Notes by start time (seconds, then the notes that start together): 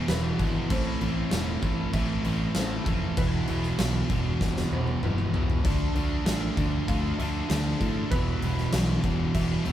Already playing: G3 D4 B4 E5
0.08 E1 E2 B2 E3 B4, snare, crash
0.39 G#1 E2 B2 E3, kick, crash
0.70 A1 A2 E3 A3 C4 C5, kick, crash
1.01 A1 A2 E3 A3, crash
1.31 E1 A2 E3 A3, snare, crash
1.62 A1 A2 E3 A3, kick, crash
1.93 A1 A2 E3 A3 E5, kick, crash
2.24 A1 A2 E3 A3 D5, crash
2.55 A1 A2 E3 A3 C5, snare, crash
2.86 F1 A2 E3 A3, kick, crash
3.17 E1 E2 B2 E3 G#3 E4 G#4 B4, kick, crash
3.48 E1 E2 B2 E3, crash
3.63 snare
3.79 B1 E2 B2 E3, snare, crash
4.09 E1 E2 B2 E3, kick, crash
4.41 E1 E2 B2 E3 D5, kick, snare
4.57 snare
4.71 E1 E2 B2 E3 C5, high tom
4.87 high tom
5.03 E1 E2 B2 E3 B4, mid tom
5.18 mid tom
5.33 E2 B2 E3, floor tom
5.50 floor tom
5.65 D2 D3 F3 A3 D4 A4 D5, kick, crash
5.95 D2 D3 A3 D4, crash
6.26 A1 D3 A3 D4, snare, crash
6.57 D2 D3 A3 D4, kick, crash
6.88 D2 D3 A3 D4 F5, kick, crash
7.18 D2 D3 A3 D4 E5, crash
7.49 D2 D3 A3 D4 D5, snare, crash
7.81 A2 D3 A3 D4, kick, crash
8.11 E1 E2 B2 E3 G3 B4 D5 E5, kick, crash
8.42 E1 E2 B2 E3, crash
8.58 snare
8.73 B1 E2 B2 E3, snare, crash
9.03 E1 E2 B2 E3, kick, crash
9.34 E1 E2 B2 E3 E5, kick, crash
9.65 E1 E2 B2 E3 D5, crash